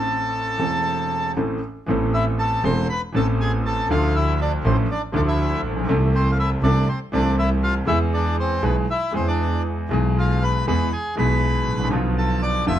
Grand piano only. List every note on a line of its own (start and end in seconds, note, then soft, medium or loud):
0.00 0.54 A1 medium
0.00 0.54 A2 medium
0.00 0.53 E3 medium
0.00 0.53 A3 medium
0.00 0.54 C4 medium
0.00 0.55 A4 medium
0.57 1.32 E1 medium
0.57 1.32 E2 medium
0.57 1.31 E3 medium
0.57 1.32 A3 medium
0.57 1.32 C4 medium
0.57 1.33 A4 medium
1.37 1.58 A1 medium
1.37 1.58 A2 medium
1.37 1.58 E3 medium
1.37 1.58 A3 medium
1.37 1.58 C4 medium
1.37 1.58 A4 medium
1.86 2.60 A1 medium
1.86 2.60 A2 medium
1.86 2.59 E3 medium
1.86 2.60 B3 medium
1.86 2.61 C4 medium
1.86 2.61 A4 medium
2.64 2.85 E1 medium
2.64 2.85 E2 medium
2.64 2.85 E3 medium
2.64 2.85 B3 medium
2.64 2.85 C4 medium
2.64 2.85 A4 medium
3.12 3.85 A1 medium
3.12 3.86 A2 medium
3.12 3.85 E3 medium
3.12 3.85 B3 medium
3.12 3.86 C4 medium
3.17 3.87 A4 medium
3.89 4.61 D2 medium
3.89 4.61 D3 medium
3.89 4.60 F3 medium
3.89 4.61 D4 medium
3.89 4.61 E4 medium
3.89 4.62 A4 medium
4.65 4.85 A1 medium
4.65 4.85 A2 medium
4.65 4.85 F3 medium
4.65 4.85 D4 medium
4.65 4.85 E4 medium
4.65 4.85 A4 medium
5.12 5.84 D2 medium
5.12 5.84 D3 medium
5.12 5.83 F3 medium
5.12 5.84 D4 medium
5.12 5.85 E4 medium
5.12 5.85 A4 medium
5.71 5.76 A1 medium
5.76 5.82 A#1 medium
5.83 5.89 B1 medium
5.83 6.58 E3 medium
5.88 6.59 C2 medium
5.88 6.59 C3 medium
5.88 6.59 A3 medium
5.88 6.59 C4 medium
5.88 6.60 A4 medium
6.64 6.84 C2 medium
6.64 6.84 C3 medium
6.64 6.84 E3 medium
6.64 6.84 A3 medium
6.64 6.84 C4 medium
6.64 6.84 A4 medium
7.12 7.84 C2 medium
7.12 7.84 C3 medium
7.12 7.83 E3 medium
7.12 7.84 A3 medium
7.12 7.84 C4 medium
7.12 7.85 A4 medium
7.86 8.58 E2 medium
7.86 8.59 E3 loud
7.86 8.58 G#3 medium
7.86 8.59 B3 medium
7.86 8.60 G#4 medium
8.62 8.84 B1 medium
8.62 8.84 B2 medium
8.62 8.84 E3 medium
8.62 8.84 G#3 medium
8.62 8.83 B3 medium
8.62 8.84 G#4 medium
9.11 9.86 E2 medium
9.11 9.13 E3 medium
9.11 9.86 E3 medium
9.11 9.85 G#3 medium
9.11 9.86 B3 medium
9.11 9.87 G#4 medium
9.89 10.63 B1 medium
9.89 10.62 B2 medium
9.89 10.61 E3 medium
9.89 10.62 G#3 medium
9.89 10.63 B3 medium
9.93 10.64 G#4 medium
10.67 10.88 E2 medium
10.67 10.88 E3 medium
10.67 10.88 G#3 medium
10.67 10.88 B3 medium
10.67 10.88 G#4 medium
11.15 11.88 B1 medium
11.15 11.88 B2 medium
11.15 11.87 E3 medium
11.15 11.88 G#3 medium
11.15 11.88 B3 medium
11.15 11.89 G#4 medium
11.74 11.79 G#1 soft
11.80 11.85 A1 medium
11.85 11.91 A#1 medium
11.89 12.62 B1 medium
11.89 12.63 B2 medium
11.89 12.62 D3 medium
11.89 12.62 F3 medium
11.89 12.63 B3 medium
11.93 12.64 F4 medium
12.66 12.79 F1 medium
12.66 12.79 F2 medium
12.66 12.79 D3 medium
12.66 12.79 F3 medium
12.66 12.79 B3 medium
12.66 12.79 F4 medium